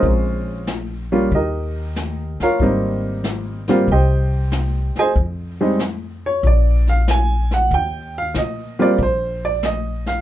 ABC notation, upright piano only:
X:1
M:4/4
L:1/8
Q:"Swing" 1/4=94
K:Eb
V:1 name="Upright piano"
[A,C_DF]2 z [G,B,DF] [EGBe]3 [FB_df] | [G,B,CE]3 [G,B,CF] [Gceg]3 [Acea] | z [G,A,CE] z _d =d f a _g | g f e [G,B,CFd] c d e f |]